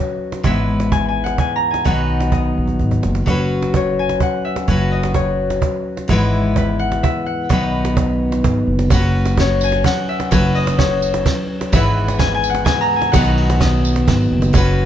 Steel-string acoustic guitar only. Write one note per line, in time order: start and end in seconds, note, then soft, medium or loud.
0.00 0.44 F#3 medium
0.00 0.45 C#4 medium
0.00 0.46 F#4 medium
0.00 0.47 B4 medium
0.43 1.84 G#2 medium
0.43 1.84 E3 medium
0.43 1.86 G#3 medium
0.43 1.86 B3 medium
0.43 1.87 E4 medium
0.43 1.88 B4 medium
1.84 3.27 B2 medium
1.84 3.27 D#3 medium
1.84 3.25 F#3 medium
1.84 3.28 B3 medium
1.84 3.28 D#4 medium
1.84 3.30 B4 medium
3.26 4.66 F#3 medium
3.26 4.67 C#4 medium
3.26 4.69 F#4 medium
3.30 4.71 B4 medium
4.68 6.09 F#3 medium
4.68 6.10 C#4 medium
4.68 6.10 F#4 medium
4.68 6.12 B4 medium
6.08 7.49 G#2 medium
6.08 7.50 E3 medium
6.08 7.51 G#3 medium
6.08 7.52 B3 medium
6.08 7.52 E4 medium
6.12 7.53 B4 medium
7.49 8.91 B2 medium
7.49 8.92 D#3 medium
7.49 8.89 F#3 medium
7.49 8.91 B3 medium
7.49 8.93 D#4 medium
7.53 8.93 B4 medium
8.91 10.30 F#3 medium
8.91 10.31 C#4 medium
8.91 10.32 F#4 medium
8.91 10.34 B4 medium
10.31 11.72 F#3 medium
10.31 11.73 C#4 medium
10.31 11.74 F#4 medium
10.31 11.76 B4 medium
11.72 13.13 G#2 medium
11.72 13.14 E3 medium
11.72 13.14 G#3 medium
11.72 13.15 B3 medium
11.72 13.15 E4 medium
11.72 13.17 B4 medium
13.14 14.54 B2 medium
13.14 14.55 D#3 medium
13.14 14.53 F#3 medium
13.14 14.54 B3 medium
13.14 14.56 D#4 medium
13.14 14.57 B4 medium
14.53 14.85 F#3 medium
14.53 14.85 C#4 medium
14.53 14.85 F#4 medium
14.57 14.85 B4 loud